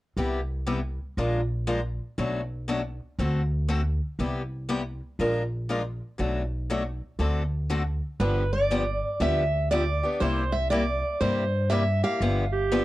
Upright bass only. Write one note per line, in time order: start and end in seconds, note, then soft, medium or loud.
0.16 0.97 C2 medium
1.17 1.98 A#1 medium
2.18 2.98 B1 medium
3.19 3.99 D2 medium
4.19 4.99 C2 medium
5.19 5.99 A#1 medium
6.19 7.00 B1 medium
7.19 8.00 D2 medium
8.20 9.00 G1 medium
9.20 10.00 D2 medium
10.21 11.01 C2 medium
11.21 12.01 G2 medium
12.20 12.85 G1 medium